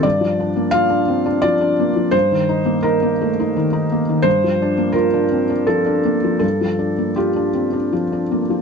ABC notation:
X:1
M:3/4
L:1/16
Q:1/4=85
K:Gm
V:1 name="Felt piano"
d4 f4 d4 | c4 B4 z4 | c4 B4 A4 | A4 G4 z4 |]
V:2 name="Felt piano"
G,, F, D B, F D C D F, D B, F, | G,, E, E B, E B, A, E E, E B, E, | G,, F, D B, F D C D F, D B, F, | G,, F, D B, F D C D F, D B, F, |]